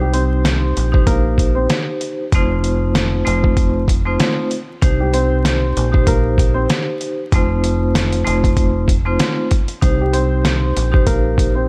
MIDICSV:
0, 0, Header, 1, 5, 480
1, 0, Start_track
1, 0, Tempo, 625000
1, 1783, Time_signature, 4, 2, 24, 8
1, 8974, End_track
2, 0, Start_track
2, 0, Title_t, "Vibraphone"
2, 0, Program_c, 0, 11
2, 0, Note_on_c, 0, 63, 97
2, 0, Note_on_c, 0, 67, 79
2, 0, Note_on_c, 0, 72, 104
2, 640, Note_off_c, 0, 63, 0
2, 643, Note_off_c, 0, 67, 0
2, 645, Note_off_c, 0, 72, 0
2, 705, Note_on_c, 0, 63, 90
2, 711, Note_on_c, 0, 67, 83
2, 716, Note_on_c, 0, 72, 93
2, 1701, Note_off_c, 0, 63, 0
2, 1704, Note_off_c, 0, 67, 0
2, 1706, Note_off_c, 0, 72, 0
2, 1799, Note_on_c, 0, 57, 88
2, 1802, Note_on_c, 0, 60, 86
2, 1804, Note_on_c, 0, 63, 86
2, 1807, Note_on_c, 0, 65, 87
2, 1810, Note_on_c, 0, 72, 100
2, 2460, Note_off_c, 0, 57, 0
2, 2462, Note_off_c, 0, 60, 0
2, 2463, Note_off_c, 0, 63, 0
2, 2464, Note_off_c, 0, 65, 0
2, 2466, Note_off_c, 0, 72, 0
2, 2493, Note_on_c, 0, 57, 98
2, 2496, Note_on_c, 0, 60, 79
2, 2498, Note_on_c, 0, 63, 82
2, 2501, Note_on_c, 0, 65, 82
2, 2504, Note_on_c, 0, 72, 106
2, 2944, Note_off_c, 0, 57, 0
2, 2946, Note_off_c, 0, 60, 0
2, 2947, Note_off_c, 0, 63, 0
2, 2948, Note_off_c, 0, 65, 0
2, 2950, Note_off_c, 0, 72, 0
2, 3114, Note_on_c, 0, 57, 86
2, 3116, Note_on_c, 0, 60, 84
2, 3119, Note_on_c, 0, 63, 80
2, 3122, Note_on_c, 0, 65, 85
2, 3124, Note_on_c, 0, 72, 100
2, 3436, Note_off_c, 0, 57, 0
2, 3437, Note_off_c, 0, 60, 0
2, 3439, Note_off_c, 0, 63, 0
2, 3440, Note_off_c, 0, 65, 0
2, 3441, Note_off_c, 0, 72, 0
2, 3698, Note_on_c, 0, 63, 100
2, 3703, Note_on_c, 0, 67, 83
2, 3709, Note_on_c, 0, 72, 107
2, 4480, Note_off_c, 0, 63, 0
2, 4482, Note_off_c, 0, 67, 0
2, 4485, Note_off_c, 0, 72, 0
2, 4546, Note_on_c, 0, 63, 91
2, 4551, Note_on_c, 0, 67, 89
2, 4557, Note_on_c, 0, 72, 96
2, 5541, Note_off_c, 0, 63, 0
2, 5544, Note_off_c, 0, 67, 0
2, 5547, Note_off_c, 0, 72, 0
2, 5638, Note_on_c, 0, 57, 89
2, 5641, Note_on_c, 0, 60, 86
2, 5644, Note_on_c, 0, 63, 87
2, 5647, Note_on_c, 0, 65, 82
2, 5649, Note_on_c, 0, 72, 98
2, 6300, Note_off_c, 0, 57, 0
2, 6301, Note_off_c, 0, 60, 0
2, 6303, Note_off_c, 0, 63, 0
2, 6304, Note_off_c, 0, 65, 0
2, 6305, Note_off_c, 0, 72, 0
2, 6332, Note_on_c, 0, 57, 97
2, 6335, Note_on_c, 0, 60, 77
2, 6338, Note_on_c, 0, 63, 85
2, 6341, Note_on_c, 0, 65, 85
2, 6344, Note_on_c, 0, 72, 101
2, 6784, Note_off_c, 0, 57, 0
2, 6785, Note_off_c, 0, 60, 0
2, 6787, Note_off_c, 0, 63, 0
2, 6788, Note_off_c, 0, 65, 0
2, 6790, Note_off_c, 0, 72, 0
2, 6953, Note_on_c, 0, 57, 82
2, 6956, Note_on_c, 0, 60, 86
2, 6958, Note_on_c, 0, 63, 81
2, 6962, Note_on_c, 0, 65, 84
2, 6964, Note_on_c, 0, 72, 98
2, 7276, Note_off_c, 0, 57, 0
2, 7277, Note_off_c, 0, 60, 0
2, 7278, Note_off_c, 0, 63, 0
2, 7280, Note_off_c, 0, 65, 0
2, 7281, Note_off_c, 0, 72, 0
2, 7537, Note_on_c, 0, 63, 98
2, 7542, Note_on_c, 0, 67, 83
2, 7547, Note_on_c, 0, 72, 109
2, 8319, Note_off_c, 0, 63, 0
2, 8322, Note_off_c, 0, 67, 0
2, 8324, Note_off_c, 0, 72, 0
2, 8385, Note_on_c, 0, 63, 89
2, 8391, Note_on_c, 0, 67, 89
2, 8397, Note_on_c, 0, 72, 97
2, 8974, Note_off_c, 0, 63, 0
2, 8974, Note_off_c, 0, 67, 0
2, 8974, Note_off_c, 0, 72, 0
2, 8974, End_track
3, 0, Start_track
3, 0, Title_t, "Upright piano"
3, 0, Program_c, 1, 0
3, 9, Note_on_c, 1, 67, 73
3, 15, Note_on_c, 1, 55, 61
3, 99, Note_off_c, 1, 67, 0
3, 102, Note_off_c, 1, 55, 0
3, 102, Note_on_c, 1, 72, 82
3, 108, Note_on_c, 1, 60, 64
3, 792, Note_off_c, 1, 72, 0
3, 795, Note_off_c, 1, 60, 0
3, 818, Note_on_c, 1, 70, 80
3, 824, Note_on_c, 1, 58, 63
3, 1172, Note_off_c, 1, 70, 0
3, 1176, Note_off_c, 1, 58, 0
3, 1190, Note_on_c, 1, 72, 68
3, 1196, Note_on_c, 1, 60, 57
3, 1289, Note_off_c, 1, 72, 0
3, 1292, Note_off_c, 1, 60, 0
3, 3843, Note_on_c, 1, 67, 68
3, 3849, Note_on_c, 1, 55, 57
3, 3936, Note_off_c, 1, 67, 0
3, 3939, Note_off_c, 1, 55, 0
3, 3943, Note_on_c, 1, 72, 83
3, 3949, Note_on_c, 1, 60, 69
3, 4632, Note_off_c, 1, 72, 0
3, 4635, Note_off_c, 1, 60, 0
3, 4665, Note_on_c, 1, 70, 82
3, 4671, Note_on_c, 1, 58, 63
3, 5016, Note_off_c, 1, 70, 0
3, 5019, Note_off_c, 1, 58, 0
3, 5025, Note_on_c, 1, 72, 76
3, 5031, Note_on_c, 1, 60, 61
3, 5126, Note_off_c, 1, 72, 0
3, 5129, Note_off_c, 1, 60, 0
3, 7688, Note_on_c, 1, 67, 73
3, 7694, Note_on_c, 1, 55, 59
3, 7779, Note_off_c, 1, 67, 0
3, 7780, Note_on_c, 1, 72, 80
3, 7782, Note_off_c, 1, 55, 0
3, 7787, Note_on_c, 1, 60, 65
3, 8471, Note_off_c, 1, 72, 0
3, 8474, Note_off_c, 1, 60, 0
3, 8498, Note_on_c, 1, 70, 79
3, 8504, Note_on_c, 1, 58, 61
3, 8852, Note_off_c, 1, 70, 0
3, 8855, Note_off_c, 1, 58, 0
3, 8870, Note_on_c, 1, 72, 69
3, 8876, Note_on_c, 1, 60, 57
3, 8969, Note_off_c, 1, 72, 0
3, 8972, Note_off_c, 1, 60, 0
3, 8974, End_track
4, 0, Start_track
4, 0, Title_t, "Fingered electric bass"
4, 0, Program_c, 2, 33
4, 0, Note_on_c, 2, 36, 104
4, 554, Note_off_c, 2, 36, 0
4, 590, Note_on_c, 2, 34, 84
4, 1276, Note_off_c, 2, 34, 0
4, 1787, Note_on_c, 2, 29, 97
4, 2475, Note_off_c, 2, 29, 0
4, 2509, Note_on_c, 2, 29, 92
4, 3195, Note_off_c, 2, 29, 0
4, 3707, Note_on_c, 2, 36, 101
4, 4394, Note_off_c, 2, 36, 0
4, 4429, Note_on_c, 2, 34, 90
4, 5115, Note_off_c, 2, 34, 0
4, 5627, Note_on_c, 2, 29, 100
4, 6314, Note_off_c, 2, 29, 0
4, 6348, Note_on_c, 2, 29, 90
4, 7035, Note_off_c, 2, 29, 0
4, 7546, Note_on_c, 2, 36, 104
4, 8234, Note_off_c, 2, 36, 0
4, 8269, Note_on_c, 2, 34, 87
4, 8955, Note_off_c, 2, 34, 0
4, 8974, End_track
5, 0, Start_track
5, 0, Title_t, "Drums"
5, 104, Note_on_c, 9, 42, 80
5, 181, Note_off_c, 9, 42, 0
5, 345, Note_on_c, 9, 38, 116
5, 350, Note_on_c, 9, 42, 92
5, 421, Note_off_c, 9, 38, 0
5, 427, Note_off_c, 9, 42, 0
5, 589, Note_on_c, 9, 42, 81
5, 666, Note_off_c, 9, 42, 0
5, 721, Note_on_c, 9, 36, 100
5, 798, Note_off_c, 9, 36, 0
5, 820, Note_on_c, 9, 36, 102
5, 820, Note_on_c, 9, 42, 90
5, 897, Note_off_c, 9, 36, 0
5, 897, Note_off_c, 9, 42, 0
5, 1059, Note_on_c, 9, 36, 83
5, 1069, Note_on_c, 9, 42, 71
5, 1136, Note_off_c, 9, 36, 0
5, 1146, Note_off_c, 9, 42, 0
5, 1302, Note_on_c, 9, 42, 90
5, 1306, Note_on_c, 9, 38, 111
5, 1379, Note_off_c, 9, 42, 0
5, 1383, Note_off_c, 9, 38, 0
5, 1543, Note_on_c, 9, 42, 68
5, 1619, Note_off_c, 9, 42, 0
5, 1784, Note_on_c, 9, 36, 119
5, 1785, Note_on_c, 9, 42, 100
5, 1861, Note_off_c, 9, 36, 0
5, 1862, Note_off_c, 9, 42, 0
5, 2026, Note_on_c, 9, 42, 76
5, 2103, Note_off_c, 9, 42, 0
5, 2266, Note_on_c, 9, 38, 112
5, 2272, Note_on_c, 9, 42, 92
5, 2343, Note_off_c, 9, 38, 0
5, 2348, Note_off_c, 9, 42, 0
5, 2510, Note_on_c, 9, 42, 83
5, 2586, Note_off_c, 9, 42, 0
5, 2642, Note_on_c, 9, 36, 102
5, 2718, Note_off_c, 9, 36, 0
5, 2740, Note_on_c, 9, 36, 106
5, 2740, Note_on_c, 9, 42, 90
5, 2817, Note_off_c, 9, 36, 0
5, 2817, Note_off_c, 9, 42, 0
5, 2979, Note_on_c, 9, 36, 89
5, 2989, Note_on_c, 9, 42, 75
5, 3056, Note_off_c, 9, 36, 0
5, 3066, Note_off_c, 9, 42, 0
5, 3222, Note_on_c, 9, 42, 88
5, 3226, Note_on_c, 9, 38, 111
5, 3299, Note_off_c, 9, 42, 0
5, 3303, Note_off_c, 9, 38, 0
5, 3463, Note_on_c, 9, 42, 68
5, 3539, Note_off_c, 9, 42, 0
5, 3704, Note_on_c, 9, 36, 116
5, 3705, Note_on_c, 9, 42, 102
5, 3781, Note_off_c, 9, 36, 0
5, 3781, Note_off_c, 9, 42, 0
5, 3945, Note_on_c, 9, 42, 79
5, 4022, Note_off_c, 9, 42, 0
5, 4185, Note_on_c, 9, 38, 113
5, 4191, Note_on_c, 9, 42, 92
5, 4262, Note_off_c, 9, 38, 0
5, 4268, Note_off_c, 9, 42, 0
5, 4430, Note_on_c, 9, 42, 85
5, 4506, Note_off_c, 9, 42, 0
5, 4562, Note_on_c, 9, 36, 103
5, 4638, Note_off_c, 9, 36, 0
5, 4660, Note_on_c, 9, 36, 106
5, 4661, Note_on_c, 9, 42, 89
5, 4737, Note_off_c, 9, 36, 0
5, 4737, Note_off_c, 9, 42, 0
5, 4899, Note_on_c, 9, 36, 84
5, 4910, Note_on_c, 9, 42, 70
5, 4976, Note_off_c, 9, 36, 0
5, 4987, Note_off_c, 9, 42, 0
5, 5143, Note_on_c, 9, 42, 89
5, 5146, Note_on_c, 9, 38, 112
5, 5219, Note_off_c, 9, 42, 0
5, 5223, Note_off_c, 9, 38, 0
5, 5382, Note_on_c, 9, 42, 66
5, 5459, Note_off_c, 9, 42, 0
5, 5624, Note_on_c, 9, 36, 118
5, 5625, Note_on_c, 9, 42, 99
5, 5701, Note_off_c, 9, 36, 0
5, 5701, Note_off_c, 9, 42, 0
5, 5865, Note_on_c, 9, 42, 77
5, 5942, Note_off_c, 9, 42, 0
5, 6106, Note_on_c, 9, 38, 115
5, 6111, Note_on_c, 9, 42, 91
5, 6183, Note_off_c, 9, 38, 0
5, 6188, Note_off_c, 9, 42, 0
5, 6239, Note_on_c, 9, 42, 54
5, 6316, Note_off_c, 9, 42, 0
5, 6349, Note_on_c, 9, 42, 84
5, 6426, Note_off_c, 9, 42, 0
5, 6481, Note_on_c, 9, 36, 105
5, 6486, Note_on_c, 9, 42, 48
5, 6558, Note_off_c, 9, 36, 0
5, 6563, Note_off_c, 9, 42, 0
5, 6579, Note_on_c, 9, 42, 92
5, 6580, Note_on_c, 9, 36, 106
5, 6656, Note_off_c, 9, 36, 0
5, 6656, Note_off_c, 9, 42, 0
5, 6818, Note_on_c, 9, 36, 84
5, 6828, Note_on_c, 9, 42, 73
5, 6895, Note_off_c, 9, 36, 0
5, 6904, Note_off_c, 9, 42, 0
5, 7061, Note_on_c, 9, 42, 88
5, 7065, Note_on_c, 9, 38, 108
5, 7138, Note_off_c, 9, 42, 0
5, 7142, Note_off_c, 9, 38, 0
5, 7301, Note_on_c, 9, 42, 69
5, 7306, Note_on_c, 9, 36, 96
5, 7378, Note_off_c, 9, 42, 0
5, 7383, Note_off_c, 9, 36, 0
5, 7435, Note_on_c, 9, 42, 54
5, 7512, Note_off_c, 9, 42, 0
5, 7544, Note_on_c, 9, 36, 119
5, 7544, Note_on_c, 9, 42, 98
5, 7620, Note_off_c, 9, 36, 0
5, 7621, Note_off_c, 9, 42, 0
5, 7784, Note_on_c, 9, 42, 76
5, 7860, Note_off_c, 9, 42, 0
5, 8024, Note_on_c, 9, 38, 114
5, 8030, Note_on_c, 9, 42, 92
5, 8101, Note_off_c, 9, 38, 0
5, 8106, Note_off_c, 9, 42, 0
5, 8269, Note_on_c, 9, 42, 82
5, 8345, Note_off_c, 9, 42, 0
5, 8401, Note_on_c, 9, 36, 101
5, 8478, Note_off_c, 9, 36, 0
5, 8499, Note_on_c, 9, 42, 91
5, 8500, Note_on_c, 9, 36, 106
5, 8576, Note_off_c, 9, 42, 0
5, 8577, Note_off_c, 9, 36, 0
5, 8739, Note_on_c, 9, 36, 85
5, 8748, Note_on_c, 9, 42, 72
5, 8816, Note_off_c, 9, 36, 0
5, 8825, Note_off_c, 9, 42, 0
5, 8974, End_track
0, 0, End_of_file